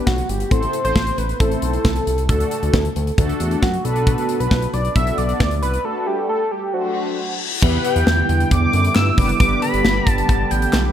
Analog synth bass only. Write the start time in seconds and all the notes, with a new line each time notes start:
0.07 B1
0.29 G1
0.51 A1
0.85 A1
0.96 A1
1.18 A1
1.40 A1
1.62 B1
1.85 C2
2.07 C2
2.29 D2
2.63 D2
2.73 D2
2.96 D2
3.18 D2
3.40 E2
3.63 F#2
3.85 B1
4.40 B1
4.51 B1
4.74 B1
4.96 B1
5.18 B1
5.40 D2
5.62 C2
7.62 E2
7.96 E2
8.07 E2
8.29 E2
8.51 E2
8.73 F#2
8.96 G2
9.18 F#1
9.40 G1
9.73 G1
9.85 G1
10.07 G1
10.29 G1
10.51 A1
10.74 B1